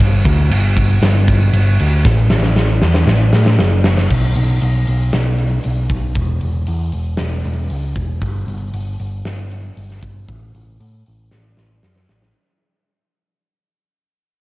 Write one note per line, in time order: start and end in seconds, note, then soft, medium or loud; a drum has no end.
0.00 0.23 G1 loud
0.00 crash loud
0.25 0.49 D2 loud
0.25 kick loud
0.25 crash medium
0.50 0.98 G1 medium
0.50 crash loud
0.77 kick medium
0.77 crash medium
1.02 1.49 G1 loud
1.02 snare loud
1.02 crash loud
1.28 kick medium
1.28 crash medium
1.53 1.77 G1 medium
1.53 crash medium
1.80 2.04 D2 medium
1.80 crash medium
2.05 2.29 A1 loud
2.05 kick loud
2.05 snare medium
2.30 2.54 A1 loud
2.30 snare medium
2.43 snare medium
2.55 2.80 A1 medium
2.55 snare medium
2.82 3.05 E2 medium
2.82 snare medium
2.94 snare medium
3.05 3.30 A1 medium
3.05 snare loud
3.33 3.57 A2 loud
3.33 snare medium
3.46 snare medium
3.59 4.07 F#1 loud
3.59 snare loud
3.84 snare loud
3.97 snare loud
4.10 4.33 B1 loud
4.10 kick loud
4.10 crash loud
4.36 4.58 B1 medium
4.36 open hi-hat medium
4.62 4.84 B1 medium
4.62 open hi-hat medium
4.87 5.10 B1 medium
4.87 open hi-hat medium
5.13 5.58 B1 medium
5.13 snare loud
5.13 open hi-hat medium
5.38 open hi-hat medium
5.64 5.88 B1 medium
5.64 open hi-hat medium
5.90 6.12 B1 medium
5.90 kick medium
5.90 open hi-hat medium
6.15 6.38 E1 loud
6.15 kick loud
6.15 open hi-hat medium
6.41 6.65 E1 medium
6.41 open hi-hat medium
6.67 6.90 E2 medium
6.67 open hi-hat medium
6.92 7.15 E1 medium
6.92 open hi-hat soft
7.17 7.42 E1 medium
7.17 snare loud
7.17 open hi-hat medium
7.44 7.67 E1 medium
7.44 open hi-hat medium
7.70 7.93 C#2 medium
7.70 open hi-hat medium
7.96 8.18 E1 medium
7.96 kick loud
7.96 open hi-hat medium
8.22 8.44 G1 loud
8.22 kick loud
8.22 open hi-hat medium
8.47 8.69 G1 medium
8.47 open hi-hat medium
8.73 8.95 G1 medium
8.73 open hi-hat medium
9.00 9.22 G1 medium
9.00 open hi-hat medium
9.25 9.69 G1 medium
9.25 snare loud
9.25 open hi-hat medium
9.51 open hi-hat medium
9.77 9.99 G1 medium
9.77 open hi-hat medium
9.91 snare soft
10.03 10.25 G1 medium
10.03 kick medium
10.03 open hi-hat medium
10.29 10.51 A1 loud
10.29 kick loud
10.29 open hi-hat medium
10.55 10.77 A1 medium
10.55 open hi-hat medium
10.80 11.02 A2 medium
10.80 open hi-hat medium
11.06 11.29 A1 medium
11.06 open hi-hat soft
11.32 11.54 A1 medium
11.32 snare medium
11.57 11.80 A1 medium
11.57 snare medium
11.83 12.05 F#2 medium
11.83 snare medium
11.96 snare medium
12.09 12.31 A1 medium
12.09 snare medium
12.22 snare medium